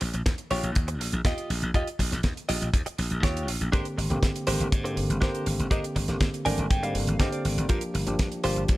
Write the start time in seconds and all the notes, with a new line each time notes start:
0.01 A#1, muted clean electric guitar stroke, open hi-hat
0.13 A#1, muted clean electric guitar stroke, closed hi-hat
0.26 D#2, kick, snare, closed hi-hat
0.38 closed hi-hat
0.51 A#1 F4 G4 C#5, open hi-hat
0.63 A#1, closed hi-hat
0.75 D#2, kick, closed hi-hat
0.88 muted clean electric guitar stroke, closed hi-hat
1.00 A#1, muted clean electric guitar stroke, open hi-hat
1.12 A#1, closed hi-hat
1.25 D#2 F4 G4 D#5, kick, snare, closed hi-hat
1.38 closed hi-hat
1.50 A#1, open hi-hat
1.62 A#1, closed hi-hat
1.74 D#2 F4 G4 D#5, kick, closed hi-hat
1.87 closed hi-hat
1.99 A#1, muted clean electric guitar stroke, kick, open hi-hat
2.12 A#1, muted clean electric guitar stroke, snare, closed hi-hat
2.23 D#2, kick, snare, closed hi-hat
2.37 closed hi-hat
2.49 A#1 F4 G4 D#5, open hi-hat
2.61 A#1, closed hi-hat
2.73 D#2, kick, closed hi-hat
2.86 muted clean electric guitar stroke, muted slap bass stroke, closed hi-hat
2.98 A#1, muted clean electric guitar stroke, open hi-hat
3.10 A#1, closed hi-hat
3.23 D#2 F4 G4 C#5, kick, snare, closed hi-hat
3.37 closed hi-hat
3.48 A#1, open hi-hat
3.61 A#1, closed hi-hat
3.72 G#2 D3 A#3 C4 D4 G4 A#4 C5, kick, closed hi-hat
3.85 closed hi-hat
3.98 G#1, muted clean electric guitar stroke, open hi-hat
4.09 G#1 D3 A#3 C4 G4, muted clean electric guitar stroke, closed hi-hat
4.23 G#2, kick, snare, closed hi-hat
4.36 closed hi-hat
4.47 G#1 D3 A#3 C4 D4 G4 A#4 C5, open hi-hat
4.60 G#1, closed hi-hat
4.72 G#2, kick, closed hi-hat
4.84 D3 A#3 C4 G4, muted clean electric guitar stroke, closed hi-hat
4.96 G#1, muted clean electric guitar stroke, open hi-hat
5.10 G#1, closed hi-hat
5.21 G#2 D3 A#3 C4 D4 G4 A#4 C5, kick, snare, closed hi-hat
5.35 closed hi-hat
5.46 G#1, open hi-hat
5.59 G#1, closed hi-hat
5.71 G#2 D3 A#3 C4 D4 G4 A#4 D#5, kick, closed hi-hat
5.84 closed hi-hat
5.96 G#1, muted clean electric guitar stroke, kick, open hi-hat
6.08 G#1 D3 A#3 C4 G4, muted clean electric guitar stroke, snare, closed hi-hat
6.21 G#2, kick, snare, closed hi-hat
6.34 closed hi-hat
6.45 G#1 D3 G3 A#3 C4 D4 G4 A#4 D5 G#5, open hi-hat
6.58 G#1, closed hi-hat
6.70 G#2 G5, kick, closed hi-hat
6.82 D3 G3 A#3 C4 F5, muted clean electric guitar stroke, closed hi-hat
6.95 G#1, muted clean electric guitar stroke, open hi-hat
7.07 G#1, closed hi-hat
7.19 G#2 D3 A#3 C4 D4 G4 A#4 C5 D#5, kick, snare, closed hi-hat
7.32 D5, closed hi-hat
7.45 G#1, open hi-hat
7.57 G#1, closed hi-hat
7.69 G2 F3 A#3 D4 F4 G4 A#4, kick, closed hi-hat
7.81 closed hi-hat
7.94 G1, muted clean electric guitar stroke, open hi-hat
8.06 G1 F3 A#3 D4 G4, muted clean electric guitar stroke, closed hi-hat
8.19 G2, kick, snare, closed hi-hat
8.32 closed hi-hat
8.43 G1 F3 A#3 D4 F4 G4 C5, open hi-hat
8.56 G1, closed hi-hat
8.68 G2, kick, closed hi-hat